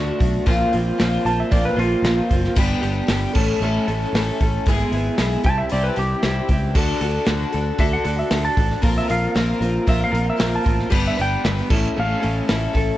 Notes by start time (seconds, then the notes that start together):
Already playing: D2 D3 A3 D4 F#4
0.19 B1 A3 D4 F#4, kick, open hi-hat
0.46 A#1 A#2 F3 A#3 C4 F4, kick, open hi-hat
0.72 A#1 A#3 C4 F4, open hi-hat
0.98 A#1 A#2 F3 A#3 C4 F4, snare, open hi-hat
1.25 A#1 A#3 C4 F4 A5, open hi-hat
1.40 E5
1.50 A#1 A#2 F3 A#3 C4 F4 D5, kick, open hi-hat
1.65 B4
1.76 A#1 A#2 F3 A#3 C4 F4, open hi-hat
2.02 A#1 F3 A#3 C4 F4, snare, open hi-hat
2.30 F#1 A#3 C4 F4, kick, open hi-hat
2.44 snare
2.56 G1 G2 D3 G3 B3 D4 G4, kick, crash
2.81 G1 G3 B3 D4 G4, open hi-hat
3.08 G1 G2 D3 G3 B3 D4 G4, snare, open hi-hat
3.35 A1 A2 E3 A3 C#4 A4, kick, crash
3.60 A1 A2 E3 A3 C#4
3.65 A4
3.88 A1 A2 E3 A3 C#4 A4, open hi-hat
4.13 A1 E3 A3, snare, open hi-hat
4.17 C#4 A4
4.41 A1 A3 C#4 A4, kick, open hi-hat
4.66 G#1 G#3 B3 E4 G#4, kick, open hi-hat
4.91 G#1 E4 G#4, open hi-hat
4.96 B3
5.18 B1 G#3 B3 E4 G#4, snare, open hi-hat
5.43 C2 C3 G3 C4 E4 G4 A5, kick, open hi-hat
5.58 E5
5.69 C2 C3 G3 C4 E4 D5, open hi-hat
5.74 G4
5.83 B4
5.96 C2 C3 G3 C4 E4 G4, open hi-hat
6.23 C2 G3 C4 E4 G4, snare, open hi-hat
6.48 C#2 C4 E4 G4, kick, open hi-hat
6.74 D2 D3 D4 F#4 A4, kick, crash
7.01 D2 D4 F#4 A4, open hi-hat
7.26 D2 D3 D4 F#4 A4, snare, open hi-hat
7.52 D2 D4 F#4 A4, open hi-hat
7.78 D2 D3 D4 F#4 A4 E5, kick, open hi-hat
7.93 F#5
8.04 D2 D3 D4 F#4 A4, open hi-hat
8.19 E5
8.31 D2 D3 D4 F#4 A4, snare, open hi-hat
8.45 A5
8.56 A1 D4 F#4 A4, kick, open hi-hat
8.71 snare
8.82 A#1 A#3 C4 F4 A#4, kick, open hi-hat
8.98 E5
9.08 A#1 C4 F4 A#4 F5, open hi-hat
9.35 A#1 A#3 C4 F4 A#4, snare, open hi-hat
9.60 A#1 C4 F4 A#4, open hi-hat
9.87 A#1 A#3 C4 F4 A#4 E5, kick, open hi-hat
10.04 F5
10.12 A#1 A#3 C4 F4 A#4, open hi-hat
10.30 E5
10.38 A#1 A#3 C4 F4 A#4, snare, open hi-hat
10.55 A5
10.64 A1 C4 F4 A#4, kick, open hi-hat
10.80 snare
10.89 G1 G3 B3 D4 B4, kick, crash
11.07 E5
11.18 G1 B3 D4 B4 G5, open hi-hat
11.43 G1 G3 B3 D4 B4, snare, open hi-hat
11.70 A1 A2 A3 C#4 E4 A4, kick, crash
11.95 A1 A2 A3 C#4 E4 A4
12.00 F5
12.20 A2 A3 C#4 E4 A4, open hi-hat
12.24 A1
12.47 A1 A3 C#4 E4 A4, snare, open hi-hat
12.74 A1 C#4 E4 A4, kick, open hi-hat